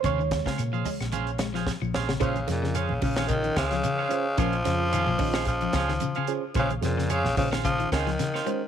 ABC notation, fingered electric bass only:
X:1
M:4/4
L:1/16
Q:"Swing 16ths" 1/4=110
K:Bbm
V:1 name="Fingered electric bass" clef=bass
E,,3 z B,,2 z B,,,6 B,,,3 | B,,,2 F,,3 B,,, B,,,4 D,,2 z4 | B,,,2 F,,3 B,,, B,,,4 D,,2 z4 | B,,,2 F,,3 B,,, B,,,4 D,,2 z4 |]